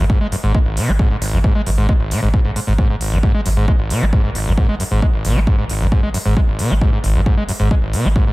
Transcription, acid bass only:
0.10 G#2
0.21 G#3
0.32 F#2
0.43 G#2
0.55 G#3
0.66 G#1
0.77 B2
0.88 B3
0.99 G#2
1.11 G#2
1.22 G#1
1.33 G#2
1.44 G#2
1.55 G#3
1.67 F#2
1.78 G#2
1.89 G#3
2.00 G#1
2.11 A#2
2.23 G#2
2.34 G#2
2.45 G#2
2.56 G#2
2.67 G#2
2.79 G#2
2.90 G#2
3.01 G#1
3.12 G#2
3.23 G#2
3.34 G#3
3.46 F#2
3.57 G#2
3.68 G#3
3.79 G#1
3.90 B2
4.02 B3
4.13 G#2
4.24 G#2
4.35 G#1
4.46 G#2
4.58 G#2
4.69 G#3
4.80 F#2
4.91 G#2
5.02 G#3
5.14 G#1
5.25 B2
5.36 B3
5.47 G#2
5.58 G#2
5.70 G#1
5.81 G#2
5.92 G#2
6.03 G#3
6.14 F#2
6.26 G#2
6.37 G#3
6.48 G#1
6.59 B2
6.70 B3
6.81 G#2
6.93 G#2
7.04 G#1
7.15 G#2
7.26 G#2
7.37 G#3
7.49 F#2
7.60 G#2
7.71 G#3
7.82 G#1
7.93 B2
8.05 B3
8.16 G#2
8.27 G#2

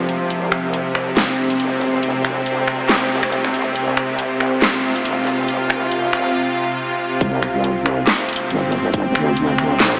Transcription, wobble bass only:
Already playing: G1
0.30 C2
1.60 G1
2.25 D2
2.85 C#2
3.11 C2
3.76 C2
5.05 G1
5.70 C2
7.21 C2
8.51 G1
9.15 D2

